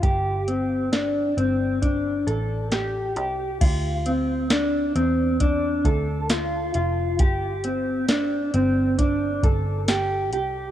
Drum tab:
CC |--------|x-------|--------|
HH |xxxxxxxx|xxxxxxxx|xxxxxxxx|
TB |--------|--x---x-|--x---x-|
SD |--o---o-|--o---o-|--o---o-|
BD |o---o---|o---oo--|o---oo--|